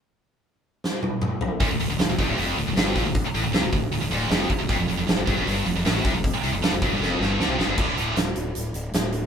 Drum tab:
CC |--------|--------|--------|--------|
HH |--------|oooooooo|oooooooo|oooooooo|
SD |----o---|--o---o-|--o---o-|--o---o-|
T1 |-----o--|--------|--------|--------|
T2 |------o-|--------|--------|--------|
FT |-------o|--------|--------|--------|
BD |--------|o--o---o|o--o---o|o--o---o|

CC |--------|x-------|
HH |oooo----|-xxxxxxx|
SD |--o-oooo|--o---o-|
T1 |--------|--------|
T2 |--------|--------|
FT |--------|--------|
BD |o--o----|o-------|